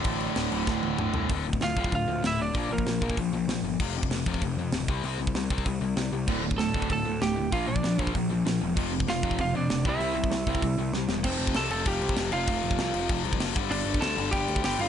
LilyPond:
<<
  \new Staff \with { instrumentName = "Lead electric guitar" } { \time 4/4 \key f \major \tempo 4 = 193 r1 | r4 <f' f''>4 <f' f''>4 <e' e''>8 <d' d''>8~ | <d' d''>8 <bes bes'>4. r2 | r1 |
r1 | r4 <a' a''>4 <a' a''>4 <g' g''>4 | <f' f''>8 <d' d''>4. r2 | r4 <f' f''>4 <f' f''>8 <d' d''>4 <e' e''>8~ |
<e' e''>2. r4 | <c' c''>4 <a' a''>8 <a' a''>8 <g' g''>4. <f' f''>8~ | <f' f''>2~ <f' f''>8 r4. | <d' d''>4 <a' a''>4 <g' g''>4 <g' g''>8 <f' f''>8 | }
  \new Staff \with { instrumentName = "Distorted electric guitar" } { \clef bass \time 4/4 \key f \major <d, a, d>4 <d, a, d>8 <d, a, d>8 <d, a, d>4 <d, a, d>8 <d, a, d>8 | r1 | r1 | r1 |
r1 | <d, a, d>8 <d, a,>8 <d, a,>8 <d, a, d>8 <d, a,>8 <d, a,>8 <d, a,>8 <d, a,>8 | <bes, f bes>8 <bes, f>8 <bes, f>8 <bes, f bes>8 <bes, f>8 <bes, f>8 <bes, f>8 <bes, f>8 | <f, c f>8 <f, c>8 <f, c>8 <f, c f>8 <f, c>8 <f, c>8 <f, c>8 <c g c'>8 |
<c g c'>8 <c g>8 <c g>8 <c g c'>8 <c g>8 <c g>8 <c g>8 <c g>8 | r1 | r1 | r1 | }
  \new Staff \with { instrumentName = "Overdriven electric guitar" } { \clef bass \time 4/4 \key f \major <d, a, d>4 <d, a, d>8 <d, a, d>8 <d, a, d>4 <d, a, d>8 <d, a, d>8 | <d, a, d>8 <d, a,>8 <d, a,>8 <d, a, d>8 <d, a,>8 <d, a,>8 <d, a,>8 <d, a,>8 | <bes, f bes>8 <bes, f>8 <bes, f>8 <bes, f bes>8 <bes, f>8 <bes, f>8 <bes, f>8 <bes, f>8 | <f, c f>8 <f, c>8 <f, c>8 <f, c f>8 <f, c>8 <f, c>8 <f, c>8 <c g c'>8 |
<c g c'>8 <c g>8 <c g>8 <c g c'>8 <c g>8 <c g>8 <c g>8 <c g>8 | <d, a, d>8 <d, a,>8 <d, a,>8 <d, a, d>8 <d, a,>8 <d, a,>8 <d, a,>8 <d, a,>8 | <bes, f bes>8 <bes, f>8 <bes, f>8 <bes, f bes>8 <bes, f>8 <bes, f>8 <bes, f>8 <bes, f>8 | <f, c f>8 <f, c>8 <f, c>8 <f, c f>8 <f, c>8 <f, c>8 <f, c>8 <c g c'>8 |
<c g c'>8 <c g>8 <c g>8 <c g c'>8 <c g>8 <c g>8 <c g>8 <c g>8 | <f, c f>4 <f, c f>8 <f, c f>8 <f, c f>4 <f, c f>8 <f, c f>8 | <f, c f>4 <f, c f>8 <f, c f>8 <f, c f>4 <f, c f>8 <g, d g>8 | <g, d g>4 <g, d g>8 <g, d g>8 <g, d g>4 <g, d g>8 <g, d g>8 | }
  \new Staff \with { instrumentName = "Picked electric bass" } { \clef bass \time 4/4 \key f \major a,,4 d,,8 d,,8 d,,8 d,,8 d,,8 c,8 | d,,4 d,,8 d,,8 d,,8 d,8 d,,4 | bes,,8 bes,,8 bes,,8 bes,,8 bes,,8 bes,,8 bes,,8 g,,8 | f,,4 f,,8 f,,8 f,,8 f,8 d,,8 c,8 |
c,8 c,8 c,8 c,8 c,8 c,8 c,8 c,8 | d,,4 d,,8 d,,8 d,,8 d,8 d,,4 | bes,,8 bes,,8 bes,,8 bes,,8 bes,,8 bes,,8 bes,,8 e,,8 | f,,4 f,,8 f,,8 f,,8 f,8 f,,8 c,8 |
c,8 c,8 c,8 c,8 c,8 c,8 c,8 e,,8 | f,,8 f,,8 c,8 f,,8 f,,8 c,8 f,,8 f,,8 | f,,8 f,,8 c,8 f,,8 f,,8 c,8 fis,,8 g,,8 | g,,8 g,,8 d,8 g,,8 g,,8 d,8 g,,8 g,,8 | }
  \new DrumStaff \with { instrumentName = "Drums" } \drummode { \time 4/4 <cymc bd>8 cymc8 <cymc sn>8 cymc8 <bd sn>8 tommh8 toml8 tomfh8 | <hho bd>8. bd16 <hho sn>8 bd16 bd16 <hho bd>4 <hho sn>4 | <hho bd>8. bd16 <hho sn>8 bd16 bd16 <hho bd>4 <hho sn>4 | <cymc bd>8. bd16 <hho sn>8 bd16 bd16 <hho bd>4 <hho sn>8 bd8 |
hho8. bd16 <hho sn>8 bd16 bd16 <hho bd>4 <hho sn>4 | <cymc bd>8. bd16 <hho sn>8 bd16 bd16 <hho bd>4 <hho sn>4 | <hho bd>8. bd16 <hho sn>8 bd16 bd16 <hho bd>4 <hho sn>4 | <cymc bd>8. bd16 <hho sn>8 bd16 bd16 <hho bd>4 <hho sn>8 bd8 |
hho8. bd16 <hho sn>8 bd16 bd16 <hho bd>4 sn8 sn8 | <cymc bd>8 cymc16 bd16 <cymc sn>8 cymc8 <cymc bd>8 cymc16 bd16 <cymc sn>8 cymc8 | <cymc bd>8 cymc16 bd16 <cymc sn>8 cymc8 <cymc bd>8 cymc16 bd16 <cymc sn>8 <cymc bd>8 | cymc8 cymc16 bd16 <cymc sn>8 cymc8 <cymc bd>8 cymc16 bd16 <cymc sn>8 cymc8 | }
>>